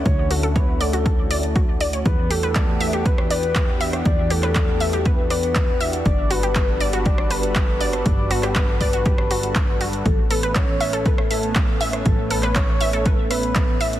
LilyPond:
<<
  \new Staff \with { instrumentName = "Soft synth lead" } { \time 4/4 \key a \mixolydian \tempo 4 = 120 cis''8 a'8 b'8 a'2 r8 | b'8 a'4. b'8 b'4 r8 | d''8 a'4. b'8 b'4 r8 | d''8 b'4. d''8 b'4. |
d''8 b'4 b'2 r8 | a'8 b'8 cis''4 a'8 a'4 r8 | a'8 b'8 cis''4 a'8 b'4 r8 | }
  \new Staff \with { instrumentName = "Synth pluck" } { \time 4/4 \key a \mixolydian r8 fis'16 a'16 cis''16 r16 d''16 fis'16 a'16 r16 d''16 r16 fis'16 r16 d''16 cis''16 | r8 g'16 b'16 d''16 r16 e''16 g'16 b'16 r16 d''16 r8. e''16 r16 | r8 g'16 b'16 d''16 r16 e''16 g'16 b'16 r16 d''16 r8. e''16 r16 | r8 fis'16 g'16 b'16 r16 d''16 fis'16 g'16 r16 b'16 r8. d''16 r16 |
r8 fis'16 g'16 b'16 r16 d''16 fis'16 g'16 r16 fis'16 r8. fis'16 r16 | r8 a'16 b'16 cis''16 r16 e''16 a'16 b'16 r16 e''16 r8. e''16 r16 | r8 a'16 b'16 cis''16 r16 e''16 a'16 b'16 r16 e''16 r8. e''16 r16 | }
  \new Staff \with { instrumentName = "Analog synth pad" } { \time 4/4 \key a \mixolydian << { <d cis' e' fis'>1 | <e b fis' g'>1~ | <e b fis' g'>1 | <g a' b'>1~ |
<g a' b'>1 | <b cis'>1~ | <b cis'>1 | } \\ { a1 | d'1~ | d'1~ | d'1~ |
d'1 | a1~ | a1 | } >> }
  \new Staff \with { instrumentName = "Analog synth bass" } { \clef bass \time 4/4 \key a \mixolydian d,1 | e,1 | e,1 | g,,1 |
g,,1 | a,,1 | a,,1 | }
  \new DrumStaff \with { instrumentName = "Drums" } \drummode { \time 4/4 <hh bd>8 hho16 hh16 <hh bd>8 hho16 hh16 <hh bd>8 hho16 hh16 <hh bd>8 hho16 hh16 | <hh bd>8 hho16 hh16 <hc hh bd>8 hho16 hh16 <hh bd>16 ss16 hho16 hh16 <hc hh bd>8 hho16 <hh ss>16 | <hh bd>8 hho16 <hc hh ss>16 <hc hh bd>8 hho16 hh16 <hh bd>8 <hho ss>16 hh16 <hc hh bd>8 hho16 hh16 | <hh bd>8 hho16 hh16 <hc hh bd>8 hho16 hh16 <hh bd>16 ss16 hho16 hh16 <hc hh bd>8 hho16 <hh ss>16 |
<hh bd>8 hho16 <hc hh ss>16 <hc hh bd>8 <hho bd>16 hh16 <hh bd>16 ss16 <hho ss>16 hh16 <hc hh bd>8 hho16 hh16 | <hh bd>8 hho16 hh16 <hc hh bd>8 hho16 hh16 <hh bd>16 ss16 hho16 hh16 <hc hh bd>8 hho16 <hh ss>16 | <hh bd>8 hho16 <hc hh ss>16 <hc hh bd>8 hho16 hh16 <hh bd>8 <hho ss>16 hh16 <hc hh bd>8 hho16 hh16 | }
>>